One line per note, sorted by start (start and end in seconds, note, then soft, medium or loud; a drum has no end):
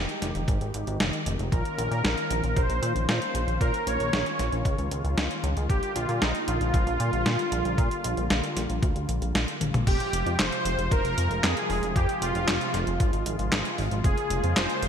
0.00 5.66 D#3 medium
0.00 1.48 G#3 medium
0.00 1.48 D#4 medium
0.00 1.48 G4 medium
0.09 closed hi-hat soft
0.22 0.33 F1 medium
0.22 snare soft
0.22 closed hi-hat medium
0.35 0.46 F1 medium
0.35 closed hi-hat soft
0.48 0.59 G#1 loud
0.48 kick loud
0.48 closed hi-hat medium
0.61 0.72 G#1 medium
0.61 closed hi-hat soft
0.74 0.85 G#1 medium
0.74 closed hi-hat medium
0.87 0.98 G#1 medium
0.87 closed hi-hat soft
1.00 1.11 F1 loud
1.00 snare loud
1.00 closed hi-hat medium
1.13 closed hi-hat soft
1.26 1.37 F1 medium
1.26 closed hi-hat medium
1.39 1.50 F1 medium
1.39 closed hi-hat soft
1.52 1.63 A#1 loud
1.52 5.66 A#3 medium
1.52 5.66 C#4 medium
1.52 9.83 F4 medium
1.52 2.60 A#4 loud
1.52 kick loud
1.52 closed hi-hat medium
1.65 closed hi-hat soft
1.78 1.89 A#1 medium
1.78 closed hi-hat medium
1.91 2.02 A#2 medium
1.91 closed hi-hat soft
2.04 2.15 A#1 loud
2.04 snare loud
2.04 closed hi-hat medium
2.18 closed hi-hat soft
2.30 2.41 A#1 medium
2.30 closed hi-hat medium
2.43 2.54 A#1 medium
2.43 closed hi-hat soft
2.56 2.67 A#1 loud
2.56 3.08 C5 loud
2.56 kick loud
2.56 closed hi-hat medium
2.69 2.80 A#1 medium
2.69 closed hi-hat soft
2.82 2.93 A#2 medium
2.82 closed hi-hat medium
2.95 3.06 A#1 medium
2.95 closed hi-hat soft
3.09 3.20 A#2 loud
3.09 3.63 C5 loud
3.09 snare loud
3.09 closed hi-hat medium
3.22 closed hi-hat soft
3.34 3.46 A#1 medium
3.34 closed hi-hat medium
3.47 3.59 A#1 medium
3.47 closed hi-hat soft
3.61 3.72 A#2 loud
3.61 3.88 A#4 loud
3.61 kick loud
3.61 closed hi-hat medium
3.74 closed hi-hat soft
3.87 3.98 A#1 medium
3.87 4.87 C#5 loud
3.87 closed hi-hat medium
4.00 4.11 A#1 medium
4.00 closed hi-hat soft
4.13 4.24 A#1 loud
4.13 snare loud
4.13 closed hi-hat medium
4.26 closed hi-hat soft
4.39 4.50 A#1 medium
4.39 snare soft
4.39 closed hi-hat medium
4.52 4.63 A#1 medium
4.52 closed hi-hat soft
4.65 4.76 C#2 loud
4.65 kick loud
4.65 closed hi-hat medium
4.78 4.89 C#2 medium
4.78 closed hi-hat soft
4.91 5.02 C#2 medium
4.91 closed hi-hat medium
5.04 5.15 C#2 medium
5.04 closed hi-hat soft
5.17 5.28 C#2 loud
5.17 snare loud
5.17 closed hi-hat medium
5.31 closed hi-hat soft
5.44 5.54 C#2 medium
5.44 closed hi-hat medium
5.57 5.68 C#2 medium
5.57 closed hi-hat soft
5.70 5.81 A#1 loud
5.70 9.83 D3 medium
5.70 9.83 G3 medium
5.70 9.83 A#3 medium
5.70 5.96 G4 loud
5.70 kick loud
5.70 closed hi-hat medium
5.83 closed hi-hat soft
5.95 6.07 A#1 medium
5.95 6.22 F4 loud
5.95 closed hi-hat medium
6.09 6.20 A#2 medium
6.09 closed hi-hat soft
6.22 6.33 A#1 loud
6.22 6.33 D#4 medium
6.22 snare loud
6.22 closed hi-hat medium
6.35 closed hi-hat soft
6.48 6.59 A#1 medium
6.48 9.31 F4 loud
6.48 closed hi-hat medium
6.61 6.72 A#1 medium
6.61 closed hi-hat soft
6.74 6.85 A#1 loud
6.74 kick loud
6.74 closed hi-hat medium
6.87 6.98 A#1 medium
6.87 closed hi-hat soft
7.00 7.11 A#2 medium
7.00 closed hi-hat medium
7.13 7.24 A#1 medium
7.13 closed hi-hat soft
7.26 7.37 A#2 loud
7.26 snare loud
7.26 closed hi-hat medium
7.39 closed hi-hat soft
7.52 7.63 A#1 medium
7.52 closed hi-hat medium
7.65 7.76 A#1 medium
7.65 closed hi-hat soft
7.78 7.89 A#2 loud
7.78 kick loud
7.78 closed hi-hat medium
7.91 closed hi-hat soft
8.04 8.15 A#1 medium
8.04 closed hi-hat medium
8.17 8.28 A#1 medium
8.17 closed hi-hat soft
8.30 8.41 A#1 loud
8.30 snare loud
8.30 closed hi-hat medium
8.44 closed hi-hat soft
8.56 8.67 A#1 medium
8.56 snare soft
8.56 closed hi-hat medium
8.70 8.81 A#1 medium
8.70 closed hi-hat soft
8.83 8.94 D2 loud
8.83 kick loud
8.83 closed hi-hat medium
8.96 9.07 D2 medium
8.96 closed hi-hat soft
9.09 9.20 A#1 medium
9.09 closed hi-hat medium
9.22 9.33 A#1 medium
9.22 closed hi-hat soft
9.35 9.46 A#1 loud
9.35 snare loud
9.35 closed hi-hat medium
9.48 closed hi-hat soft
9.61 9.72 A#1 medium
9.61 closed hi-hat medium
9.61 high tom medium
9.74 9.85 A#1 medium
9.74 closed hi-hat soft
9.74 mid tom medium
9.87 9.98 F1 loud
9.87 14.00 C3 medium
9.87 14.00 F3 medium
9.87 14.88 G#3 medium
9.87 14.88 F4 medium
9.87 10.36 G4 loud
9.87 kick loud
9.87 closed hi-hat medium
9.87 crash loud
10.00 closed hi-hat soft
10.13 10.24 F1 medium
10.13 closed hi-hat loud
10.26 10.37 F2 medium
10.26 closed hi-hat soft
10.39 10.50 F1 loud
10.39 10.93 C5 loud
10.39 snare loud
10.39 clap loud
10.39 closed hi-hat medium
10.52 closed hi-hat soft
10.65 10.76 F1 loud
10.65 closed hi-hat loud
10.78 10.89 F1 medium
10.78 closed hi-hat soft
10.91 11.02 F1 loud
10.91 11.45 A#4 loud
10.91 kick loud
10.91 closed hi-hat medium
11.05 11.15 F1 medium
11.05 closed hi-hat soft
11.18 11.28 F2 medium
11.18 closed hi-hat loud
11.31 11.41 F1 medium
11.31 closed hi-hat soft
11.44 11.54 F2 loud
11.44 11.92 G#4 loud
11.44 snare loud
11.44 clap loud
11.44 closed hi-hat medium
11.57 closed hi-hat soft
11.70 11.80 F1 loud
11.70 open hi-hat medium
11.83 11.94 F1 medium
11.83 closed hi-hat soft
11.96 12.07 F2 loud
11.96 12.23 G4 loud
11.96 kick loud
11.96 closed hi-hat medium
12.09 closed hi-hat soft
12.22 12.33 F1 medium
12.22 13.22 F4 loud
12.22 closed hi-hat loud
12.35 12.46 F1 medium
12.35 closed hi-hat soft
12.48 12.59 F1 loud
12.48 snare loud
12.48 clap loud
12.48 closed hi-hat medium
12.61 closed hi-hat soft
12.74 12.85 F1 medium
12.74 snare soft
12.74 closed hi-hat loud
12.87 12.98 F1 medium
12.87 closed hi-hat soft
13.00 13.11 G#1 loud
13.00 kick loud
13.00 closed hi-hat medium
13.13 13.24 G#1 medium
13.13 closed hi-hat soft
13.26 13.37 G#1 loud
13.26 closed hi-hat loud
13.39 13.50 G#1 medium
13.39 closed hi-hat soft
13.52 13.63 G#1 loud
13.52 snare loud
13.52 clap loud
13.52 closed hi-hat medium
13.65 closed hi-hat soft
13.78 13.89 G#1 medium
13.78 open hi-hat medium
13.91 14.02 G#1 medium
13.91 closed hi-hat soft
14.04 14.15 F1 loud
14.04 14.88 C#3 medium
14.04 14.88 A#3 medium
14.04 14.58 G#4 loud
14.04 kick loud
14.04 closed hi-hat medium
14.18 closed hi-hat soft
14.30 14.41 F1 loud
14.30 closed hi-hat medium
14.43 14.54 F2 medium
14.43 closed hi-hat soft
14.56 14.67 F1 loud
14.56 14.88 C5 loud
14.56 snare loud
14.56 clap medium
14.56 closed hi-hat medium
14.70 closed hi-hat soft
14.83 14.88 F1 medium
14.83 closed hi-hat loud